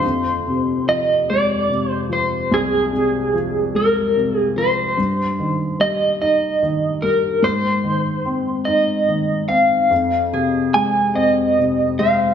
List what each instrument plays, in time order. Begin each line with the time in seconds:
Already playing: harp C4 F4, clean electric guitar C5
0.04 felt piano F2
0.47 felt piano C3
0.88 felt piano F3, clean electric guitar D#5
1.30 felt piano G#3, clean electric guitar D5
1.69 felt piano C3
1.91 clean electric guitar C5
2.09 felt piano F3, clean electric guitar C5
2.51 felt piano C2, clean electric guitar G#4
2.92 felt piano C3
3.34 felt piano F3
3.74 felt piano G#3, clean electric guitar A#4
4.16 felt piano C3
4.37 clean electric guitar G#4
4.56 felt piano F3, clean electric guitar C5
4.97 felt piano G2
5.39 felt piano D#3
5.80 felt piano G3, clean electric guitar D#5
6.21 felt piano D#4, clean electric guitar D#5
6.62 felt piano D#3
7.02 felt piano G3, clean electric guitar A#4
7.42 felt piano G#2, clean electric guitar C5
7.84 felt piano D#3
8.26 felt piano C4
8.65 felt piano D#4, clean electric guitar D#5
9.08 felt piano D#3
9.48 felt piano C4, clean electric guitar F5
9.90 felt piano F2
10.33 felt piano C3, harp G#4
10.74 felt piano G#3, clean electric guitar G#5
11.14 felt piano C4, clean electric guitar D#5
11.59 felt piano C3
11.99 felt piano G#3, harp C4, clean electric guitar F5